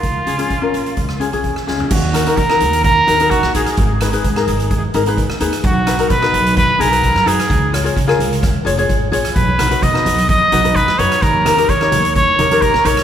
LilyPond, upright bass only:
\new Staff \with { instrumentName = "Upright bass" } { \clef bass \time 4/4 \key dis \minor \tempo 4 = 129 cis,8 cis,8 r8 ais,,8 cis,8. ais,,8. cis,8 | dis,4 dis8 dis,4 dis,8. ais,,16 ais,,16 r16 | gis,,4 gis,8 gis,,4 gis,,8. dis,16 dis,16 r16 | b,,4 b,8 b,,4 b,,8. fis,16 fis,16 r16 |
cis,4 cis8 cis,4 eis,,8 gis,,8 ais,,8 | b,,4 b,8 b,,4 b,,8. fis,16 fis,16 r16 | dis,4 dis8 dis,4 dis,8. ais,,16 ais,,16 r16 | }